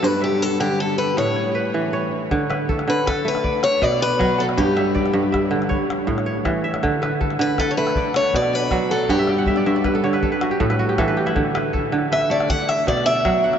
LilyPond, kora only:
<<
  \new Staff \with { instrumentName = "Kora" } { \time 12/8 \key d \major \tempo 4. = 106 << { d''8 e''4. r8 a'4 cis''8 b'4 cis''4~ | cis''8 b'8 a'4 b'4 d''4. d''4 fis''8~ | fis''8 e''8 d''4 e''4 cis''4. cis''4 e''8~ | e''8 b'8 a'4 b'4 d''4. d''4 fis''8~ |
fis''8 r1 r4. | r8 b'8 a'4 b'4 d''4. d''4 fis''8 | } \\ { r1. | r1. | r1. | r1. |
fis''16 e''16 g''16 fis''16 e''16 d''16 e''16 d''16 b'16 a'16 cis''16 b'16 a'16 b'16 fis'16 g'16 a'16 b'16 fis'16 g'16 a'16 b'16 g'16 e'16~ | e'16 r1 r4. r16 | } >> }
  \new Staff \with { instrumentName = "Kora" } { \clef bass \time 12/8 \key d \major g,4 r8 d4 r8 a,4 r8 e4 r8 | d4 r8 d4 a8 r4 b,4 fis4 | g,4 r8 g,4 d8 r4 a,4 e4 | d4 r8 d4 a8 r4 b,4 fis4 |
g,4 r8 g,4 d8 r4 a,4 e4 | d4 r8 d4 a8 r4 b,4 fis4 | }
>>